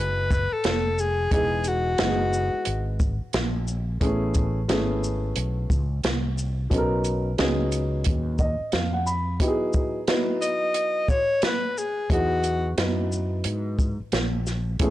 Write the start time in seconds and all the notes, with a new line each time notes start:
Already playing: F#1 G#3 B3 D#4 E4 F#4
0.00 B4
0.31 kick, shaker
0.52 A4, muted fretless electric bass stroke
0.64 F1, snare, closed hi-hat
0.98 G#4, shaker
1.31 E1 G#3 B3 D#4 E4 G#4, kick, closed hi-hat
1.64 F#4, closed hi-hat, shaker
1.98 F#1 G#3 B3 D#4 E4 F#4, snare, closed hi-hat
2.07 G#4
2.33 shaker
2.54 muted fretless electric bass stroke
2.65 G#1, closed hi-hat
3.00 kick, shaker
3.22 muted fretless electric bass stroke
3.33 A#1, snare, closed hi-hat
3.68 shaker
4.01 A1 A3 B3 C#4 E4 G#4, kick, closed hi-hat
4.34 kick, closed hi-hat, shaker
4.68 G#1 A3 B3 C#4 E4 G#4, snare, closed hi-hat
5.04 shaker
5.36 B1, closed hi-hat
5.70 C#2, kick, shaker
6.04 C2, snare, closed hi-hat
6.38 shaker
6.70 B1 F#3 B3 C#4 D#4 A4, kick, closed hi-hat
6.78 A#4
7.04 closed hi-hat, shaker
7.38 C#2 F#3 B3 C#4 D#4 G#4, snare, closed hi-hat
7.72 closed hi-hat, shaker
8.04 D#2, kick, closed hi-hat
8.39 D#5, kick, shaker
8.60 muted fretless electric bass stroke
8.72 F2 F5, snare, closed hi-hat
8.93 F#5
9.06 B5, shaker
9.40 F#3 B3 D#4 E4 G4, kick, closed hi-hat
9.48 G#4
9.73 kick, shaker
10.07 F#3 B3 D#4 E4 B4, snare, closed hi-hat
10.41 D#5, closed hi-hat, shaker
10.74 closed hi-hat
11.08 C#5, kick, shaker
11.42 B4, snare, closed hi-hat
11.78 G#4, shaker
12.09 E2 F#3 B3 D#4 E4 F#4 G#4, kick, closed hi-hat
12.44 closed hi-hat, shaker
12.77 F#2 F#3 B3 D#4 E4 B4, snare, closed hi-hat
13.12 shaker
13.44 G#2, closed hi-hat
13.79 kick, shaker
14.00 muted fretless electric bass stroke
14.12 A#1, snare, closed hi-hat
14.47 snare, shaker
14.79 A1 A3 B3 C#4 E4 G#4, kick, closed hi-hat